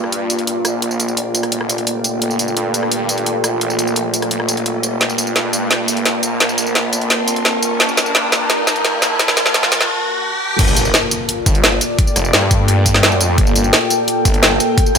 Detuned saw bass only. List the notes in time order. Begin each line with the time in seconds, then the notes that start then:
Already playing: G2
0.65 A#1
1.52 G1
2.22 G1
2.57 G2
3.44 A#1
4.31 G1
4.79 F#1
5.01 G1
5.36 G2
6.23 A#1
7.10 G1
7.80 G1
8.15 G2
9.02 A#1
10.59 G1
11.46 G1
12.16 F1
12.33 G2
13.06 F#2
13.38 G1
14.25 G1
14.95 F1